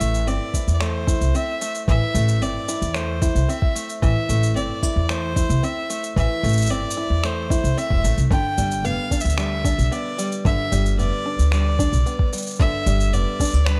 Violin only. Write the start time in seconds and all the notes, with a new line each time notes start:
Already playing: E5
0.28 D5
0.74 D5
0.81 C5
1.35 E5
1.89 E5
2.42 D5
2.96 C5
3.49 E5
4.03 E5
4.56 D5
5.10 C5
5.64 E5
6.17 E5
6.71 D5
7.25 C5
7.78 E5
8.32 G5
8.85 F5
9.21 E5
9.39 E5
9.84 E5
9.92 D5
10.45 E5
10.99 D5
11.52 D5
12.60 E5
13.13 D5
13.67 B4